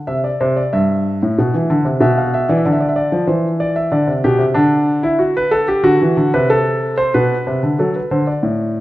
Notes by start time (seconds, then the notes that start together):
0.07 C3 E5
0.24 D5
0.41 C3 C5
0.56 D5
0.73 G2 E5
1.23 A2
1.38 B2
1.54 E3
1.70 D3
1.85 C3
2.00 B2 E5
2.18 F5
2.34 E5
2.49 E3 D5
2.58 E5
2.65 D3 D5
2.72 E5
2.80 D5
2.89 E5
2.96 D5
3.12 F3
3.27 E3 C5
3.60 D5
3.76 E5
3.91 D3 D5
4.07 C3
4.24 B2 G4
4.39 C3
4.54 D3 D4
5.03 E4
5.19 F#4
5.37 B4
5.51 A4
5.68 G4
5.83 D3 F#4
6.01 E3
6.17 D3
6.34 C3 B4
6.50 A4
6.98 C5
7.14 B2 B4
7.47 C3
7.63 D3
7.79 F#3 A4
7.95 B4
8.11 D3 C5
8.27 D5
8.43 A2